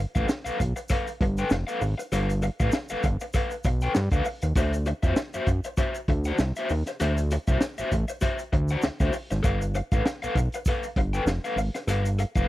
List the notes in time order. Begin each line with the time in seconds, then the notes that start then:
0.15 A1 A4 B4 F5, kick, closed hi-hat, shaker
0.28 muted overdriven electric guitar stroke, snare, shaker
0.45 B1 A4 B4 F5, closed hi-hat, shaker
0.59 B1, muted overdriven electric guitar stroke, kick, closed hi-hat, shaker
0.76 muted overdriven electric guitar stroke, closed hi-hat, shaker
0.89 A4 B4 F5, kick, closed hi-hat, shaker
1.07 closed hi-hat, shaker
1.21 G1, muted overdriven electric guitar stroke, kick, closed hi-hat
1.37 A4 B4 G5, closed hi-hat, shaker
1.50 F1, muted overdriven electric guitar stroke, snare, shaker
1.67 A4 B4 F5, closed hi-hat, shaker
1.81 G#1, muted overdriven electric guitar stroke, open hi-hat, shaker
1.98 muted overdriven electric guitar stroke, closed hi-hat, shaker
2.12 G1 A4 B4 F5, closed hi-hat, shaker
2.29 closed hi-hat, shaker
2.42 muted overdriven electric guitar stroke, closed hi-hat, shaker
2.60 A1 A4 B4 F5, kick, closed hi-hat, shaker
2.72 muted overdriven electric guitar stroke, snare, shaker
2.89 G1 A4 B4 F5, closed hi-hat, shaker
3.03 G1, muted overdriven electric guitar stroke, kick, closed hi-hat, shaker
3.20 muted overdriven electric guitar stroke, closed hi-hat, shaker
3.33 A4 B4 F5, kick, closed hi-hat, shaker
3.51 closed hi-hat, shaker
3.64 B1, muted overdriven electric guitar stroke, kick, closed hi-hat, shaker
3.81 A4 B4 G5, closed hi-hat, shaker
3.95 G2, muted overdriven electric guitar stroke, snare, shaker
4.11 D2 A4 B4 F5, kick, closed hi-hat, shaker
4.25 muted overdriven electric guitar stroke, open hi-hat, shaker
4.42 D#2, muted overdriven electric guitar stroke, closed hi-hat, shaker
4.55 D2 F#4 C5 E5, kick, closed hi-hat, shaker
4.73 closed hi-hat, shaker
4.86 muted overdriven electric guitar stroke, closed hi-hat, shaker
5.02 F2 F#4 C5 E5, kick, closed hi-hat, shaker
5.16 muted overdriven electric guitar stroke, snare, shaker
5.33 F#2 F#4 C5 E5, closed hi-hat, shaker
5.47 F#2, muted overdriven electric guitar stroke, kick, closed hi-hat, shaker
5.64 muted overdriven electric guitar stroke, closed hi-hat, shaker
5.77 F#4 C5 E5, kick, closed hi-hat, shaker
5.95 closed hi-hat, shaker
6.08 D2, muted overdriven electric guitar stroke, kick, closed hi-hat
6.24 F#4 C5 F#5, closed hi-hat, shaker
6.38 C2, muted overdriven electric guitar stroke, snare, shaker
6.56 F#4 C5 E5, closed hi-hat, shaker
6.69 D#2, muted overdriven electric guitar stroke, open hi-hat, shaker
6.86 muted overdriven electric guitar stroke, snare, closed hi-hat, shaker
7.00 D2 F#4 C5 E5, closed hi-hat, shaker
7.18 closed hi-hat, shaker
7.31 muted overdriven electric guitar stroke, closed hi-hat, shaker
7.47 C2 F#4 C5 E5, kick, closed hi-hat, shaker
7.61 muted overdriven electric guitar stroke, snare, shaker
7.78 A1 F#4 C5 E5, closed hi-hat, shaker
7.92 A1, muted overdriven electric guitar stroke, kick, closed hi-hat, shaker
8.08 muted overdriven electric guitar stroke, closed hi-hat, shaker
8.21 F#4 C5 E5, kick, closed hi-hat, shaker
8.39 closed hi-hat, shaker
8.53 D2, muted overdriven electric guitar stroke, kick, closed hi-hat
8.68 F#4 C5 F#5, closed hi-hat, shaker
8.82 D2, muted overdriven electric guitar stroke, snare, shaker
9.00 D2 F#4 C5 E5, kick, closed hi-hat, shaker
9.13 muted overdriven electric guitar stroke, open hi-hat, shaker
9.31 G#1, muted overdriven electric guitar stroke, snare, closed hi-hat, shaker
9.43 G1 A4 B4 F5, kick, closed hi-hat, shaker
9.62 closed hi-hat, shaker
9.75 muted overdriven electric guitar stroke, closed hi-hat, shaker
9.91 A1 A4 B4 F5, kick, closed hi-hat, shaker
10.05 muted overdriven electric guitar stroke, snare, shaker
10.22 B1 A4 B4 F5, closed hi-hat, shaker
10.35 B1, muted overdriven electric guitar stroke, kick, closed hi-hat, shaker
10.52 muted overdriven electric guitar stroke, closed hi-hat, shaker
10.65 A4 B4 F5, kick, closed hi-hat, shaker
10.83 closed hi-hat, shaker
10.96 G1, muted overdriven electric guitar stroke, kick, closed hi-hat
11.13 A4 B4 G5, closed hi-hat, shaker
11.26 F1, muted overdriven electric guitar stroke, snare, shaker
11.44 A4 B4 F5, closed hi-hat, shaker
11.56 G#1, muted overdriven electric guitar stroke, open hi-hat, shaker
11.75 muted overdriven electric guitar stroke, snare, closed hi-hat, shaker
11.87 G1 A4 B4 F5, closed hi-hat, shaker
12.05 closed hi-hat, shaker
12.19 muted overdriven electric guitar stroke, closed hi-hat, shaker
12.35 F1 A4 B4 F5, kick, closed hi-hat, shaker